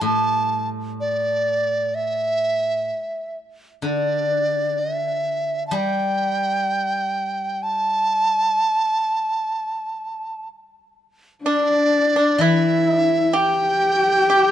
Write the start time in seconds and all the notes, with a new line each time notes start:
Already playing: G3
0.01 A2 A5
1.00 D5
1.95 E5
3.82 D3 D5
4.80 E5
5.67 G3 A5
5.75 G5
7.63 A5
11.44 D4 D5
12.16 D4
12.38 E3 E4 E5
12.88 D#4
12.99 D4
13.33 G4 G5
14.30 G4